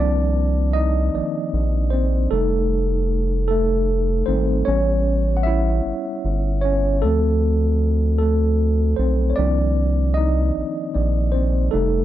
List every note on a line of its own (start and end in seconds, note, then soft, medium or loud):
0.00 1.10 C2 loud
0.00 1.10 D#3 soft
0.00 1.10 F3 soft
0.00 1.10 A#3 soft
0.00 1.10 C4 medium
0.00 0.71 D4 medium
0.00 0.76 D5 medium
0.00 0.14 A5 medium
0.73 1.89 D#4 medium
0.73 1.88 D#5 medium
1.14 1.22 A#1 soft
1.14 1.49 D#3 soft
1.14 1.49 F3 soft
1.14 1.49 A#3 soft
1.14 1.50 D5 soft
1.53 2.28 A#1 medium
1.90 2.11 C4 medium
1.90 2.08 C5 medium
2.31 4.23 F1 loud
2.31 3.45 G3 medium
2.31 3.17 A3 medium
2.31 3.46 D#4 medium
2.31 3.15 A4 medium
3.48 4.24 A3 medium
3.48 4.29 A4 medium
4.26 4.63 G#1 medium
4.26 4.63 G3 soft
4.26 4.63 A3 soft
4.26 4.46 C4 medium
4.26 4.63 D#4 soft
4.26 4.44 C5 medium
4.65 5.81 A1 medium
4.65 6.98 G3 medium
4.65 6.98 B3 soft
4.65 5.35 C#4 medium
4.65 5.33 C#5 medium
5.37 5.44 F#5 medium
5.43 6.59 E4 medium
5.43 6.65 E5 medium
5.86 5.93 G1 soft
6.25 7.05 G1 medium
6.61 6.82 C#4 medium
6.61 6.79 C#5 medium
7.02 8.95 D2 medium
7.02 7.55 F3 medium
7.02 7.88 A3 medium
7.02 7.56 C4 medium
7.02 7.86 A4 medium
8.19 8.95 A3 medium
8.19 8.93 A4 medium
8.96 9.34 B1 medium
8.96 9.29 C4 medium
8.96 9.27 C5 medium
9.30 9.37 C#5 medium
9.36 10.51 C2 medium
9.36 10.51 D#3 soft
9.36 10.51 F3 soft
9.36 10.51 A#3 soft
9.36 10.52 C4 medium
9.36 10.12 D4 medium
9.36 10.11 D5 loud
10.14 11.30 D#4 medium
10.14 11.36 D#5 medium
10.57 10.64 A#1 soft
10.93 11.69 A#1 medium
10.93 11.29 D#3 soft
10.93 11.29 F3 soft
10.93 11.29 A#3 soft
10.93 11.30 D5 soft
11.32 11.70 C4 medium
11.32 11.69 C5 medium
11.71 12.05 F1 loud
11.71 12.05 G3 medium
11.71 12.05 A3 medium
11.71 12.05 D#4 medium
11.71 12.05 A4 medium